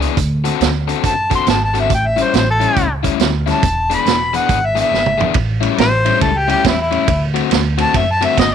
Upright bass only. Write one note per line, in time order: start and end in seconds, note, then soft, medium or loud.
0.17 0.48 D2 medium
0.60 0.91 D2 medium
1.04 1.35 F#2 medium
1.47 1.90 G#1 medium
1.90 2.21 A1 medium
2.33 2.64 A1 medium
2.77 3.08 C#2 medium
3.20 3.50 D2 medium
3.63 3.94 E1 medium
4.06 4.37 E1 medium
4.49 4.80 G#1 medium
4.91 5.23 G#1 medium
5.35 5.66 A1 medium
5.78 6.09 A1 medium
6.22 6.52 C#2 medium
6.65 6.96 E2 medium
7.08 7.39 D2 medium
7.52 7.82 D2 medium
7.94 8.25 F#2 loud
8.38 8.55 G1 medium